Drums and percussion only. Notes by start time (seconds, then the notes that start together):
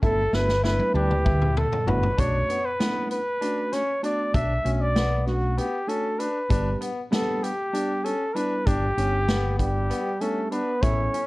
0.03 kick, closed hi-hat
0.33 snare
0.49 snare
0.64 snare
0.79 high tom
0.95 high tom
1.11 mid tom
1.26 kick, mid tom
1.42 mid tom
1.57 mid tom
1.73 floor tom
1.88 floor tom
2.03 floor tom
2.18 kick, closed hi-hat
2.50 closed hi-hat
2.80 snare, closed hi-hat
3.11 closed hi-hat
3.42 closed hi-hat
3.73 snare, closed hi-hat
4.04 closed hi-hat
4.34 kick, closed hi-hat
4.66 closed hi-hat
4.96 snare, closed hi-hat
5.27 snare, closed hi-hat
5.58 closed hi-hat
5.89 closed hi-hat
6.20 closed hi-hat
6.51 kick, closed hi-hat
6.82 closed hi-hat
7.13 snare, closed hi-hat
7.44 closed hi-hat
7.75 closed hi-hat
8.06 closed hi-hat
8.36 closed hi-hat
8.67 kick, closed hi-hat
8.98 closed hi-hat
9.28 snare, closed hi-hat
9.59 kick, closed hi-hat
9.90 closed hi-hat
10.21 closed hi-hat
10.52 closed hi-hat
10.83 kick, closed hi-hat
11.14 closed hi-hat